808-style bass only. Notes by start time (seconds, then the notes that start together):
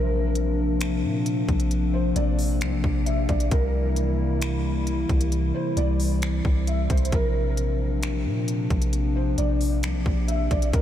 Already playing: A#1
1.03 A#2
1.49 A#1
2.16 A#1
2.61 C2
2.73 A#1
2.84 A#1
3.29 A#1
3.52 C2
5.09 C2
5.77 C2
6.45 C2
6.90 C2
7.12 A#1
8.25 A#2
8.70 A#1
9.38 A#1
9.83 C2
9.95 A#1
10.06 A#1
10.51 A#1
10.73 C2